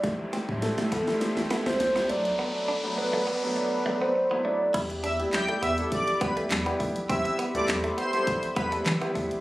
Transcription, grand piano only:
X:1
M:4/4
L:1/16
Q:1/4=102
K:Em
V:1 name="Grand piano"
[G,A,CE]2 z [G,A,CE]3 z [G,A,CE]2 z [G,A,CE]2 z [G,A,CE] [F,A,B,D]2- | [F,A,B,D]2 z [F,A,B,D]3 z [F,A,B,D]2 z [F,A,B,D]2 z [F,A,B,E]2 z | [G,B,DEG]2 z [G,B,DEG]3 z [G,B,DEA]2 z [G,B,DEG]2 z [G,B,DEG]2 z | [G,B,CEG]2 z [G,B,CEA]3 z [G,B,CEA]2 z [G,B,CEA]2 z [G,B,CEG]2 z |]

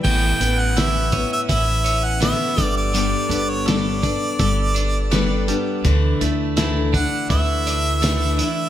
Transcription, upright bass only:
X:1
M:4/4
L:1/8
Q:1/4=83
K:Amix
V:1 name="Upright bass" clef=bass
A,,, A,,,3 A,,,3 G,,,- | G,,, G,,,3 G,,,4 | D,, D,,3 D,,4 |]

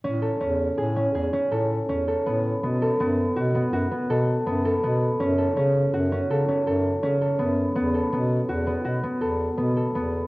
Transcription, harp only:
X:1
M:7/4
L:1/8
Q:1/4=164
K:A
V:1 name="Harp"
C A C2 G C G C A2 C A B,2 | B, A B,2 F B, F B, A2 B, A B,2 | C A C2 F C A C A2 C A B,2 | B, A B,2 F B, F B, A2 B, A B,2 |]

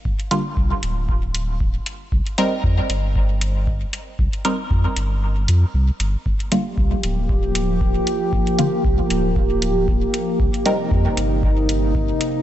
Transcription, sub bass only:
X:1
M:4/4
L:1/8
Q:"Swing 16ths" 1/4=116
K:Gm
V:1 name="Sub bass" clef=bass
G,,, z C,, D,,,4 z | C,, z F,, G,,,4 z | C,, z F,, G,,,2 F,, C,, G,,, | G,,, z C,, D,,,4 z |
G,,, z C,, D,,,4 z | C,, z F,, G,,,4 z |]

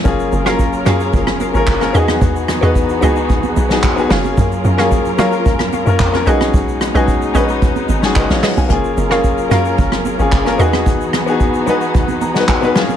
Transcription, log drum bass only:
X:1
M:4/4
L:1/16
Q:1/4=111
K:F#
V:1 name="Log drum bass" clef=bass
F,,,2 F,,,4 F,,2 F,,,3 G,,, F,,,2 =E,,2 | =E,,3 E,,3 C,,4 B,,,4 F,,,2 | F,,2 F,,4 F,2 F,,3 F,, E,,2 B,,,2 | B,,,3 B,,,3 A,,,4 G,,,2 F,,, A,,, z B,,, |
F,,,2 F,,,4 F,,2 F,,,3 G,,, F,,,2 =E,,2 | z16 |]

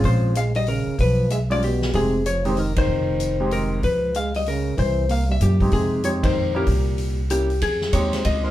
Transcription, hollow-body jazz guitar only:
X:1
M:3/4
L:1/8
Q:"Swing" 1/4=190
K:Fm
V:1 name="Hollow-body jazz guitar"
c2 f e B2 | =B2 =e =d G2 | A2 d c B c- | c4 B2 |
_c2 f e B2 | c2 f =e G2 | A2 d c2 G- | G4 G2 |
A2 d c e c |]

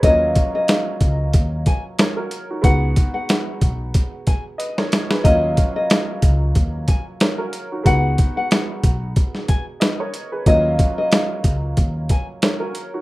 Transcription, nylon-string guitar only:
X:1
M:4/4
L:1/16
Q:"Swing 16ths" 1/4=92
K:Ebm
V:1 name="Nylon-string guitar"
e3 e4- e z2 a z4 z | g3 g4- g z2 a z4 z | e3 e4- e z2 a z4 z | g3 g4- g z2 a z4 z |
e3 e4- e z2 a z4 z |]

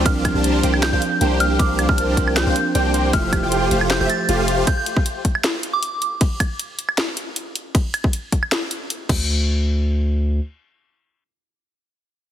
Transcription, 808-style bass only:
X:1
M:4/4
L:1/16
Q:1/4=156
K:F
V:1 name="808-style bass" clef=bass
C,,3 C,,3 C,,3 C,, z2 C,,4 | C,,3 C,,3 C,,3 C,, z2 C,,4 | F,,,3 F,,,3 F,,,3 F,,, z2 F,,,4 | z16 |
z16 | z12 z2 D,,2- | D,,12 z4 | z16 |]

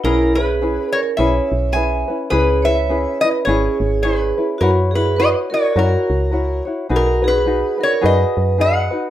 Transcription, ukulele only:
X:1
M:4/4
L:1/8
Q:"Swing" 1/4=105
K:B
V:1 name="Ukulele"
[CEGB] [CEB] [CEGB]2 [CEGB]2 [CEGB] [CEB] | [CEGB] [CEB] [CEGB] [CEB] [CEGB]2 [CEGB] [CEB] | [EFBc] [EFc] [EFBc] [EFc] [EFAc]2 [EFAc] [EFc] | [DFGB] [DFB] [DFGB] [DFB] [DFGB]2 [DFGB] [DFB] |]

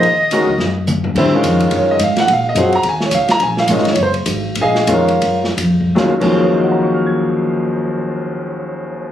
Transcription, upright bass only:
X:1
M:4/4
L:1/8
Q:"Swing" 1/4=208
K:Ebdor
V:1 name="Upright bass" clef=bass
E,,3 D,, G,,4 | E,, z F,,2 G,,2 A,,2 | B,,2 G,,2 E,,2 D,, z | B,,,2 A,,,2 G,,,2 A,,,2 |
B,,,2 F,,2 G,,2 F,,2 | E,, E,,6- E,,- | E,,8 |]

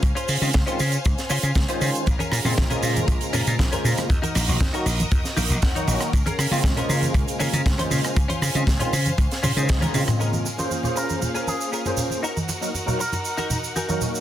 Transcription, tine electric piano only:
X:1
M:4/4
L:1/16
Q:1/4=118
K:Bbm
V:1 name="Tine electric piano"
z3 [E,A,CDF] z [E,A,CDF] z6 z [E,A,DFc]3 | z3 [D,A,B,CF]2 [D,A,B,Fc]8 [D,A,B,Fc]3 | z3 [E,G,B,EG] z [E,G,B,EG] z6 z [E,G,B,EG]3 | z3 [D,A,B,CF]2 [D,A,B,Fc]8 [D,A,B,Fc]3 |
z3 [E,A,CDF] z [E,A,CDF] z4 z [E,A,DAc]3 [D,A,B,CF]2- | [D,A,B,CF]2 z [B,DFAc]2 [B,DFAc]8 [B,DFAc]3 | z3 [G,B,EGB] z [G,B,EGB] z6 z [G,B,EGB]3 |]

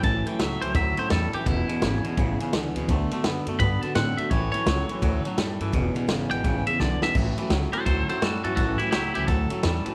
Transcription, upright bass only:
X:1
M:4/4
L:1/8
Q:"Swing" 1/4=169
K:A
V:1 name="Upright bass" clef=bass
A,,, z C,, C,, D,, z E,, z | E,,, z G,,, z A,,, z C,, D,, | D,, z F,, F,, =G,, z A,, z | A,,, z C,, z D,, z F,, =G,, |
E,,, z G,,, G,,, A,,, z B,,, z | A,,, z C,, z D,, z F,, =G,, | A,,, z C,, C,, D,, z E,, z |]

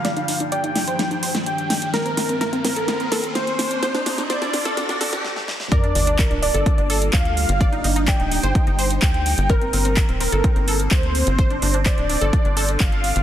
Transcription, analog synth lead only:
X:1
M:4/4
L:1/8
Q:1/4=127
K:Gm
V:1 name="Analog synth lead"
f2 g4 g2 | B3 B3 c2- | c2 d4 z2 | d3 d3 f2- |
f2 g4 g2 | B3 B3 c2- | c2 d4 f2 |]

